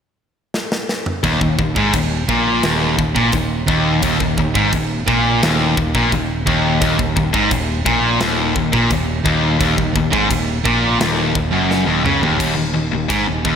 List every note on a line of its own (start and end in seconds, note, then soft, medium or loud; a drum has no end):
0.54 snare medium
0.72 snare medium
0.89 snare medium
1.06 mid tom medium
1.23 1.40 D#1 medium
1.23 1.40 D#2 medium
1.23 kick medium
1.23 crash medium
1.41 1.57 D#1 medium
1.41 1.58 D#2 medium
1.41 kick medium
1.59 1.75 D#1 medium
1.59 1.76 D#2 medium
1.59 kick loud
1.76 1.93 G#1 loud
1.76 1.93 G#2 loud
1.76 kick loud
1.93 2.26 D#1 medium
1.93 2.23 D#2 medium
1.93 kick loud
1.93 crash medium
2.29 2.61 A#1 medium
2.29 2.63 A#2 medium
2.29 kick loud
2.63 2.96 D#1 medium
2.63 2.98 D#2 loud
2.63 snare loud
2.63 crash medium
2.99 3.15 D#1 medium
2.99 3.16 D#2 medium
2.99 kick loud
3.16 3.32 A#1 loud
3.16 3.32 A#2 loud
3.16 kick medium
3.32 3.66 D#1 medium
3.32 3.61 D#2 medium
3.32 kick medium
3.32 crash medium
3.68 4.01 D#1 medium
3.68 4.02 D#2 medium
3.68 kick loud
4.02 4.19 D#1 medium
4.02 4.20 D#2 loud
4.02 kick loud
4.02 crash medium
4.20 4.37 D#1 medium
4.20 4.38 D#2 medium
4.20 kick medium
4.38 4.54 D#1 medium
4.38 4.56 D#2 medium
4.38 kick loud
4.55 4.72 G#1 loud
4.55 4.72 G#2 loud
4.55 kick loud
4.73 5.05 D#1 medium
4.73 5.01 D#2 medium
4.73 kick loud
4.73 crash medium
5.08 5.40 A#1 medium
5.08 5.42 A#2 loud
5.08 kick loud
5.42 5.75 D#1 medium
5.42 5.76 D#2 loud
5.42 snare loud
5.42 crash soft
5.77 5.94 D#1 medium
5.77 5.95 D#2 medium
5.77 kick loud
5.95 6.11 A#1 loud
5.95 6.12 A#2 loud
5.95 kick loud
6.12 6.45 D#1 medium
6.12 6.40 D#2 medium
6.12 kick medium
6.12 crash soft
6.46 6.80 D#1 medium
6.46 6.80 D#2 medium
6.46 kick loud
6.81 6.98 D#1 loud
6.81 6.97 D#2 loud
6.81 kick loud
6.81 crash medium
6.98 7.15 D#1 medium
6.98 7.15 D#2 medium
6.98 kick medium
7.16 7.33 D#1 medium
7.16 7.34 D#2 medium
7.16 kick loud
7.33 7.50 G#1 loud
7.33 7.50 G#2 loud
7.33 kick loud
7.51 7.84 D#1 loud
7.51 7.79 D#2 medium
7.51 kick loud
7.51 crash medium
7.86 8.19 A#1 medium
7.86 8.20 A#2 medium
7.86 kick loud
8.20 8.53 D#1 medium
8.20 8.55 D#2 loud
8.20 snare loud
8.20 crash medium
8.56 8.72 D#1 medium
8.56 8.73 D#2 medium
8.56 kick medium
8.73 8.90 A#1 medium
8.73 8.89 A#2 loud
8.73 kick loud
8.90 9.23 D#1 medium
8.90 9.18 D#2 medium
8.90 kick medium
8.90 crash medium
9.25 9.58 D#1 loud
9.25 9.59 D#2 loud
9.25 kick loud
9.60 9.77 D#1 medium
9.60 9.77 D#2 loud
9.60 kick medium
9.60 crash medium
9.78 9.94 D#1 medium
9.78 9.94 D#2 medium
9.78 kick medium
9.95 10.12 D#1 medium
9.95 10.13 D#2 medium
9.95 kick medium
10.12 10.29 G#1 loud
10.12 10.29 G#2 loud
10.12 kick loud
10.30 10.63 D#1 medium
10.30 10.58 D#2 medium
10.30 kick loud
10.30 crash medium
10.65 10.98 A#1 loud
10.65 10.99 A#2 medium
10.65 kick loud
11.00 11.32 D#1 medium
11.00 11.33 D#2 loud
11.00 snare loud
11.00 crash medium
11.35 11.51 D#1 medium
11.35 11.52 D#2 medium
11.35 kick medium
11.52 11.85 F#1 medium
11.52 11.86 F#2 medium
11.71 snare medium
11.87 12.03 D#1 medium
11.87 12.04 D#2 medium
12.04 12.21 C#2 loud
12.04 12.21 C#3 loud
12.04 mid tom medium
12.22 12.38 D#1 medium
12.22 12.38 D#2 medium
12.22 floor tom medium
12.39 12.56 D#1 medium
12.39 12.55 D#2 medium
12.39 kick medium
12.39 crash medium
12.39 china soft
12.57 12.73 D#1 medium
12.57 12.73 D#2 medium
12.74 12.91 D#1 medium
12.74 12.90 D#2 medium
12.92 13.09 D#1 medium
12.92 13.09 D#2 medium
13.09 13.26 G#1 loud
13.09 13.25 G#2 loud
13.09 kick loud
13.09 china medium
13.27 13.44 D#1 medium
13.27 13.43 D#2 medium
13.45 13.56 D#1 medium
13.45 13.56 D#2 medium
13.45 kick loud